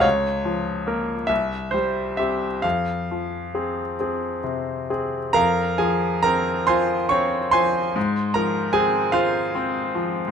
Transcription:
X:1
M:12/8
L:1/8
Q:3/8=46
K:Fm
V:1 name="Grand piano"
d3 =e c e f4- f z | [Bfb] [Aa] [Bb] [cac'] [dd'] [cac']2 [Bb] [Aa] [Fcf]3 |]
V:2 name="Grand piano"
D,, F, [B,B] C,, G, [CG] F,, F, [CA] [CA] C, [CA] | F,, F, C F C F, A,, F, C2 C F, |]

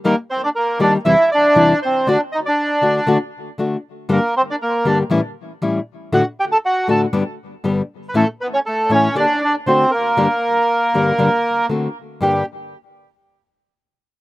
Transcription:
X:1
M:4/4
L:1/16
Q:1/4=118
K:Gm
V:1 name="Bandoneon"
[B,B]2 [Cc] [Dd] [B,B]2 [Dd]2 [=E=e]2 [Dd]4 [Cc]2 | [Dd]2 [Ee] [Dd]6 z6 z | [B,B]2 [Cc] [Dd] [B,B]2 [Dd]2 z8 | [^F^f]2 [Gg] [Aa] [Ff]2 [Aa]2 z6 z3/2 =B/2 |
[A,A]2 [=B,=B] [^C^c] [A,A]2 [Cc]2 [Dd]2 [Dd]2 [=C=c]2 [_B,_B]2- | [B,B]12 z4 | G2 z12 z2 |]
V:2 name="Nylon-string guitar"
[E,G,B,EG]2 z4 [E,G,B,EG]2 [=E,,C,=E,G,C=E]2 z2 [E,,C,E,G,CE]2 z2 | [D,A,D^F]2 z4 [D,A,DF]2 [D,A,DF]2 z2 [D,A,DF]2 z2 | [G,,D,G,B,DG]2 z4 [G,,D,G,B,DG]2 [A,,=E,G,^C=E]2 z2 [A,,E,G,CE]2 z2 | [A,,D,A,D^F]2 z4 [A,,D,A,DF]2 [G,,D,G,=B,DG]2 z2 [G,,D,G,B,DG]2 z2 |
[A,,=E,A,^C=E]2 z4 [A,,E,A,CE]2 [D,B,DG]2 z2 [D,A,D^F]2 z2 | [G,,D,G,B,DG]2 z4 [G,,D,G,B,DG]2 [G,,D,G,B,DG]2 z2 [D,A,C^F]2 z2 | [G,,D,G,B,DG]2 z12 z2 |]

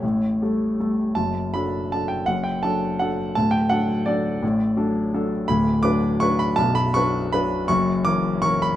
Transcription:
X:1
M:3/4
L:1/8
Q:1/4=164
K:D
V:1 name="Grand piano"
c4- c z | a2 b2 a g | f g a2 f2 | a g f2 d2- |
d4- d z | [K:Bm] b2 d'2 c' b | a b c'2 b2 | c'2 d'2 c' b |]
V:2 name="Grand piano" clef=bass
[A,,,A,,]2 [G,A,A]2 [G,A,A]2 | [F,,,F,,]2 [F,DA]2 [F,DA]2 | [F,,,F,,]2 [F,DA]2 [F,DA]2 | [D,,,D,,]2 [F,DA]2 [F,DA]2 |
[A,,,A,,]2 [F,DA]2 [F,DA]2 | [K:Bm] [D,,,D,,]2 [F,DB]2 [F,DB]2 | [B,,,,B,,,]2 [F,DB]2 [F,DB]2 | [F,,,F,,]2 [E,C^A]2 [E,CA]2 |]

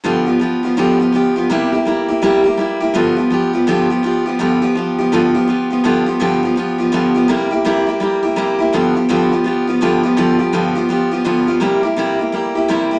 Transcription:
X:1
M:4/4
L:1/8
Q:"Swing" 1/4=166
K:Gmix
V:1 name="Steel-string acoustic guitar"
[G,,D,F,B,FG] [F,B,FG] [F,B,FG] [F,B,FG] [G,,D,F,B,FG] [F,B,FG] [F,B,FG] [F,B,FG] | [C,G,_B,EG] [B,EG] [G,B,EG] [B,EG] [C,G,B,EG] [B,EG] [G,B,EG] [B,EG] | [G,,D,F,B,FG] [F,B,FG] [F,B,FG] [F,B,FG] [G,,D,F,B,FG] [F,B,FG] [F,B,FG] [F,B,FG] | [G,,D,F,B,FG] [F,B,FG] [F,B,FG] [F,B,FG] [G,,D,F,B,FG] [F,B,FG] [F,B,FG] [F,B,FG] |
[G,,D,F,B,FG] [F,B,FG] [G,,D,F,B,FG] [F,B,FG] [F,B,FG] [F,B,FG] [G,,D,F,B,FG] [F,B,FG] | [C,G,_B,EG] [B,EG] [C,G,B,EG] [B,EG] [G,B,EG] [B,EG] [C,G,B,EG] [B,EG] | [G,,D,F,B,FG] [F,B,FG] [G,,D,F,B,FG] [F,B,FG] [F,B,FG] [F,B,FG] [G,,D,F,B,FG] [F,B,FG] | [G,,D,F,B,FG] [F,B,FG] [G,,D,F,B,FG] [F,B,FG] [F,B,FG] [F,B,FG] [G,,D,F,B,FG] [F,B,FG] |
[C,G,_B,EG] [B,EG] [C,G,B,EG] [B,EG] [G,B,EG] [B,EG] [C,G,B,EG] [B,EG] |]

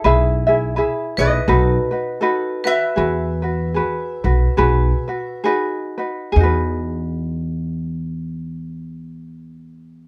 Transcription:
X:1
M:4/4
L:1/8
Q:"Swing" 1/4=72
K:E
V:1 name="Resonator guitar played with a steel bar"
z3 [Bd]4 [Be]- | [Be]6 z2 | z8 |]
V:2 name="Vibraphone"
z3 B4 B- | B6 z2 | z8 |]
V:3 name="Ukulele"
[EGBe] [EGe] [EGBe] [EG] [DFAB] [DFB] [DFAB] [FB] | [FGB] [FB] [FGB] [FB] [FGB] [FB] [DFGB] [DFB] | [DFGB]8 |]
V:4 name="Upright bass" clef=bass
B,,,3 B,,, B,,, z3 | E,,3 B,,, B,,, z3 | E,,8 |]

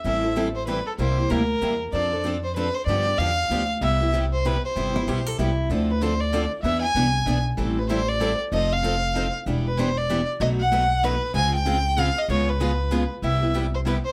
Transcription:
X:1
M:3/4
L:1/8
Q:"Swing" 1/4=191
K:C
V:1 name="Violin"
e2 z c B A | c2 _B3 z | d2 z c B c | d2 f3 z |
e2 z c B c- | c3 z3 | z B c d2 z | e ^g4 z |
z B c d2 z | _e f4 z | z B c d2 z | ^d ^f3 B2 |
_a g3 f _e | _d _c4 z | e2 z c B c |]
V:2 name="Steel-string acoustic guitar"
z6 | z6 | z6 | z6 |
z6 | z E G A E2 | z6 | z6 |
z6 | z6 | z6 | z6 |
z6 | z6 | z6 |]
V:3 name="Steel-string acoustic guitar"
[E,G,CEA] [CEA] [E,G,CEA] z [E,G,CEA] z | [C,G,_B,EG] [B,EG] [C,G,B,EG] z [C,G,B,EG] z | [F,CDA] [CDA] [F,CDA] z [F,CDA] z | [D,F,B,DG] [B,DG] [D,F,B,DG] z [D,F,B,DG] z |
[C,G,B,EG] [B,EG] [C,G,B,EG] z [C,G,B,EG] z | [C,G,B,EG] [B,EG] [C,G,B,EG] z [C,G,B,EG] z | [D,F,CDA] z [D,F,CDA] z [D,F,CDA] z | [E,B,D^G] z [E,B,DG] z [E,B,DG] z |
[E,G,CEA] z [E,G,CEA] z [E,G,CEA] z | [F,C_EA] z [F,CEA] z [F,CEA] z | [E,B,DG] z [E,B,DG] z [E,B,DG] z | [B,,^F,A,^D^F] z [B,,F,A,DF] z [B,,F,A,DF] z |
[_D,_A,CF_A] z [D,A,CFA] z [D,A,CFA] z | [_D,_A,_CF_A] z [D,A,CFA] z [D,A,CFA] z | [C,G,B,EG] [B,EG] [C,G,B,EG] z [C,G,B,EG] z |]
V:4 name="Steel-string acoustic guitar"
[E,G,CEA] z [E,G,CEA] z [E,G,CEA] z | [C,G,_B,EG] z [C,G,B,EG] z [C,G,B,EG] z | [F,CDA] z [F,CDA] z [F,CDA] z | [D,F,B,DG] z [D,F,B,DG] z [D,F,B,DG] z |
[C,G,B,EG] z [C,G,B,EG] z [C,G,B,EG] z | [C,G,B,EG] z [C,G,B,EG] z [C,G,B,EG] z | [D,F,CDA] z [D,F,CDA] z [D,F,CDA] z | [E,B,D^GB] z [E,B,DGB] z [E,B,DGB] z |
[E,G,CEA] z [E,G,CEA] z [E,G,CEA] z | [F,C_EA] z [F,CEA] z [F,CEA] z | [E,G,DEB] z [E,G,DEB] z [E,G,DEB] z | [B,,^F,A,^D^FB] z [B,,F,A,DFB] z [B,,F,A,DFB] z |
[_D,_A,CF_A] z [D,A,CFA] z [D,A,CFA] z | [_D,_A,_CF_A] z [D,A,CFA] z [D,A,CFA] z | [C,G,B,EG] z [C,G,B,EG] z [C,G,B,EG] z |]
V:5 name="Upright bass" clef=bass
A,,,6 | C,,2 D,,2 E,,2 | F,,6 | G,,2 E,,2 D,,2 |
C,,6 | G,,,2 B,,,2 C,,2 | D,,6 | E,,2 C,,2 B,,,2 |
A,,,6 | F,,,6 | E,,,6 | B,,,6 |
_D,,6 | _D,,6 | C,,6 |]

